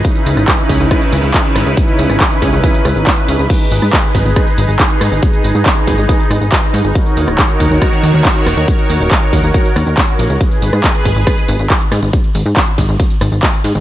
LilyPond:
<<
  \new Staff \with { instrumentName = "Supersaw synth" } { \time 4/4 \key gis \minor \tempo 4 = 139 << { b'1~ | b'1~ | b'1~ | b'1 |
cis''1~ | cis''1 | b'1 | r1 | } \\ { <cis cis' dis' e'>1~ | <cis cis' dis' e'>1 | <dis' gis'>1~ | <dis' gis'>1 |
<dis fis' ais'>1~ | <dis fis' ais'>1 | gis'1 | r1 | } >> }
  \new Staff \with { instrumentName = "Analog synth bass" } { \clef bass \time 4/4 \key gis \minor r8 cis,16 gis,,16 r8 cis,16 cis,16 r8 cis,16 cis,16 r8 gis,,16 cis,16 | r8 cis,16 gis,,16 r8 cis,16 cis,16 r8 cis,16 gis,,16 r8 cis,16 cis,16 | r8 gis,,16 gis,16 r8 gis,,16 gis,,16 r8 gis,,16 gis,,16 r8 gis,16 gis,,16 | r8 gis,,16 gis,16 r8 gis,,16 gis,,16 r8 gis,,16 gis,,16 r8 gis,16 gis,,16 |
r8 dis,16 dis,,16 r8 dis,16 dis,16 r8 dis,16 dis,16 r8 dis,,16 dis,16 | r8 dis,16 dis,,16 r8 dis,16 dis,16 r8 dis,16 dis,16 r8 ais,,16 cis,16 | r8 gis,,16 gis,16 r8 gis,,16 gis,,16 r8 gis,,16 gis,,16 r8 gis,16 gis,,16 | r8 gis,,16 gis,16 r8 gis,,16 gis,,16 r8 gis,,16 gis,,16 r8 gis,16 gis,,16 | }
  \new DrumStaff \with { instrumentName = "Drums" } \drummode { \time 4/4 <hh bd tamb>16 <hh tamb>16 <hho cymr tamb>16 <hh ss tamb>16 <hc hh bd tamb>16 <hh tamb>16 <hho bd cymr tamb>16 <hh tamb>16 <hh bd ss tamb>16 <hh tamb>16 <hho cymr tamb>16 <hh tamb>16 <hc hh bd tamb>16 <hh tamb>16 <hho cymr ss tamb>16 <hh tamb>16 | <hh bd tamb>16 <hh tamb>16 <hho cymr tamb>16 <hh ss tamb>16 <hc hh bd tamb>16 <hh tamb>16 <hho bd cymr tamb>16 <hh tamb>16 <hh bd tamb>16 <hh tamb>16 <hho cymr ss tamb>16 <hh tamb>16 <hc hh bd tamb>16 <hh tamb>16 <hho cymr tamb>16 <hh tamb>16 | <cymc hh bd tamb>16 <hh tamb>16 <hho cymr tamb>16 <hh ss tamb>16 <hc hh bd tamb>16 <hh tamb>16 <hho bd cymr tamb>16 <hh tamb>16 <hh bd ss tamb>16 <hh tamb>16 <hho cymr tamb>16 <hh tamb>16 <hc hh bd tamb>16 <hh tamb>16 <hho cymr ss tamb>16 <hh tamb>16 | <hh bd tamb>16 <hh tamb>16 <hho cymr tamb>16 <hh tamb>16 <hc hh bd tamb>16 <hh tamb>16 <hho bd cymr tamb>16 <hh tamb>16 <hh bd tamb>16 <hh tamb>16 <hho cymr ss tamb>16 <hh tamb>16 <hc hh bd tamb>16 <hh tamb>16 <hho cymr tamb>16 <hh tamb>16 |
<hh bd tamb>16 <hh tamb>16 <hho cymr tamb>16 <hh ss tamb>16 <hc hh bd tamb>16 <hh tamb>16 <hho bd cymr tamb>16 <hh tamb>16 <hh bd ss tamb>16 <hh tamb>16 <hho cymr tamb>16 <hh tamb>16 <hc hh bd tamb>16 <hh tamb>16 <hho cymr ss tamb>16 <hh tamb>16 | <hh bd tamb>16 <hh tamb>16 <hho cymr tamb>16 <hh tamb>16 <hc hh bd tamb>16 <hh tamb>16 <hho bd cymr tamb>16 <hh tamb>16 <hh bd tamb>16 <hh tamb>16 <hho cymr ss tamb>16 <hh tamb>16 <hc hh bd tamb>16 <hh tamb>16 <hho cymr tamb>16 <hh tamb>16 | <hh bd tamb>16 <hh tamb>16 <hho cymr tamb>16 <hh ss tamb>16 <hc hh bd tamb>16 <hh tamb>16 <hho bd cymr tamb>16 <hh tamb>16 <hh bd ss tamb>16 <hh tamb>16 <hho cymr tamb>16 <hh tamb>16 <hc hh bd tamb>16 <hh tamb>16 <hho cymr ss tamb>16 <hh tamb>16 | <hh bd tamb>16 <hh tamb>16 <hho cymr tamb>16 <hh tamb>16 <hc hh bd tamb>16 <hh tamb>16 <hho bd cymr tamb>16 <hh tamb>16 <hh bd tamb>16 <hh tamb>16 <hho cymr ss tamb>16 <hh tamb>16 <hc hh bd tamb>16 <hh tamb>16 <hho cymr tamb>16 <hh tamb>16 | }
>>